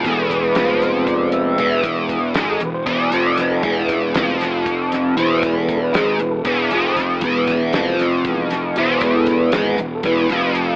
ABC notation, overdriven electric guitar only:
X:1
M:7/8
L:1/8
Q:1/4=117
K:none
V:1 name="Overdriven electric guitar" clef=bass
[E,,E,]2 [F,,F,]4 [E,,E,]- | [E,,E,]2 [^G,,^G,] E,, [E,,E,] [F,,F,]2 | [E,,E,]2 [F,,F,]4 [E,,E,]- | [E,,E,]2 [^G,,^G,] E,, [E,,E,] [F,,F,]2 |
[E,,E,]2 [F,,F,]4 [E,,E,]- | [E,,E,]2 [^G,,^G,] E,, [E,,E,] [F,,F,]2 |]